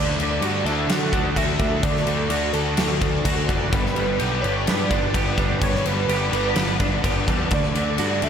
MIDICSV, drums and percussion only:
0, 0, Header, 1, 2, 480
1, 0, Start_track
1, 0, Key_signature, 2, "major"
1, 0, Tempo, 473560
1, 1868, Time_signature, 4, 2, 24, 8
1, 8406, End_track
2, 0, Start_track
2, 0, Title_t, "Drums"
2, 199, Note_on_c, 9, 49, 51
2, 301, Note_off_c, 9, 49, 0
2, 428, Note_on_c, 9, 49, 68
2, 530, Note_off_c, 9, 49, 0
2, 672, Note_on_c, 9, 49, 55
2, 773, Note_off_c, 9, 49, 0
2, 907, Note_on_c, 9, 49, 83
2, 914, Note_on_c, 9, 38, 117
2, 1008, Note_off_c, 9, 49, 0
2, 1016, Note_off_c, 9, 38, 0
2, 1144, Note_on_c, 9, 36, 83
2, 1152, Note_on_c, 9, 49, 54
2, 1245, Note_off_c, 9, 36, 0
2, 1254, Note_off_c, 9, 49, 0
2, 1382, Note_on_c, 9, 36, 69
2, 1386, Note_on_c, 9, 49, 72
2, 1484, Note_off_c, 9, 36, 0
2, 1487, Note_off_c, 9, 49, 0
2, 1615, Note_on_c, 9, 49, 54
2, 1618, Note_on_c, 9, 36, 82
2, 1716, Note_off_c, 9, 49, 0
2, 1719, Note_off_c, 9, 36, 0
2, 1857, Note_on_c, 9, 36, 103
2, 1857, Note_on_c, 9, 49, 76
2, 1959, Note_off_c, 9, 36, 0
2, 1959, Note_off_c, 9, 49, 0
2, 1989, Note_on_c, 9, 38, 29
2, 2090, Note_off_c, 9, 38, 0
2, 2095, Note_on_c, 9, 49, 59
2, 2197, Note_off_c, 9, 49, 0
2, 2331, Note_on_c, 9, 49, 78
2, 2432, Note_off_c, 9, 49, 0
2, 2569, Note_on_c, 9, 49, 63
2, 2671, Note_off_c, 9, 49, 0
2, 2809, Note_on_c, 9, 49, 85
2, 2816, Note_on_c, 9, 38, 115
2, 2910, Note_off_c, 9, 49, 0
2, 2917, Note_off_c, 9, 38, 0
2, 3056, Note_on_c, 9, 36, 83
2, 3057, Note_on_c, 9, 49, 57
2, 3157, Note_off_c, 9, 36, 0
2, 3158, Note_off_c, 9, 49, 0
2, 3296, Note_on_c, 9, 36, 75
2, 3297, Note_on_c, 9, 49, 78
2, 3397, Note_off_c, 9, 36, 0
2, 3398, Note_off_c, 9, 49, 0
2, 3537, Note_on_c, 9, 36, 77
2, 3546, Note_on_c, 9, 49, 52
2, 3639, Note_off_c, 9, 36, 0
2, 3648, Note_off_c, 9, 49, 0
2, 3778, Note_on_c, 9, 36, 105
2, 3781, Note_on_c, 9, 49, 67
2, 3879, Note_off_c, 9, 36, 0
2, 3882, Note_off_c, 9, 49, 0
2, 3911, Note_on_c, 9, 38, 30
2, 4012, Note_off_c, 9, 38, 0
2, 4015, Note_on_c, 9, 49, 55
2, 4117, Note_off_c, 9, 49, 0
2, 4252, Note_on_c, 9, 49, 67
2, 4353, Note_off_c, 9, 49, 0
2, 4501, Note_on_c, 9, 49, 54
2, 4603, Note_off_c, 9, 49, 0
2, 4736, Note_on_c, 9, 49, 75
2, 4743, Note_on_c, 9, 38, 109
2, 4837, Note_off_c, 9, 49, 0
2, 4844, Note_off_c, 9, 38, 0
2, 4974, Note_on_c, 9, 36, 81
2, 4975, Note_on_c, 9, 49, 55
2, 5075, Note_off_c, 9, 36, 0
2, 5077, Note_off_c, 9, 49, 0
2, 5214, Note_on_c, 9, 36, 75
2, 5216, Note_on_c, 9, 49, 77
2, 5315, Note_off_c, 9, 36, 0
2, 5317, Note_off_c, 9, 49, 0
2, 5451, Note_on_c, 9, 36, 80
2, 5451, Note_on_c, 9, 49, 53
2, 5552, Note_off_c, 9, 36, 0
2, 5553, Note_off_c, 9, 49, 0
2, 5692, Note_on_c, 9, 36, 94
2, 5692, Note_on_c, 9, 49, 68
2, 5793, Note_off_c, 9, 49, 0
2, 5794, Note_off_c, 9, 36, 0
2, 5830, Note_on_c, 9, 38, 28
2, 5932, Note_off_c, 9, 38, 0
2, 5935, Note_on_c, 9, 49, 64
2, 6036, Note_off_c, 9, 49, 0
2, 6176, Note_on_c, 9, 49, 75
2, 6278, Note_off_c, 9, 49, 0
2, 6417, Note_on_c, 9, 49, 64
2, 6518, Note_off_c, 9, 49, 0
2, 6646, Note_on_c, 9, 49, 84
2, 6653, Note_on_c, 9, 38, 114
2, 6747, Note_off_c, 9, 49, 0
2, 6754, Note_off_c, 9, 38, 0
2, 6889, Note_on_c, 9, 49, 57
2, 6893, Note_on_c, 9, 36, 79
2, 6991, Note_off_c, 9, 49, 0
2, 6995, Note_off_c, 9, 36, 0
2, 7136, Note_on_c, 9, 36, 76
2, 7137, Note_on_c, 9, 49, 79
2, 7237, Note_off_c, 9, 36, 0
2, 7239, Note_off_c, 9, 49, 0
2, 7378, Note_on_c, 9, 36, 85
2, 7381, Note_on_c, 9, 49, 51
2, 7479, Note_off_c, 9, 36, 0
2, 7482, Note_off_c, 9, 49, 0
2, 7608, Note_on_c, 9, 49, 65
2, 7617, Note_on_c, 9, 36, 92
2, 7623, Note_on_c, 9, 54, 28
2, 7710, Note_off_c, 9, 49, 0
2, 7718, Note_off_c, 9, 36, 0
2, 7724, Note_off_c, 9, 54, 0
2, 7746, Note_on_c, 9, 54, 30
2, 7847, Note_off_c, 9, 54, 0
2, 7859, Note_on_c, 9, 49, 56
2, 7861, Note_on_c, 9, 54, 72
2, 7960, Note_off_c, 9, 49, 0
2, 7962, Note_off_c, 9, 54, 0
2, 8088, Note_on_c, 9, 49, 73
2, 8092, Note_on_c, 9, 54, 88
2, 8189, Note_off_c, 9, 49, 0
2, 8193, Note_off_c, 9, 54, 0
2, 8332, Note_on_c, 9, 49, 57
2, 8406, Note_off_c, 9, 49, 0
2, 8406, End_track
0, 0, End_of_file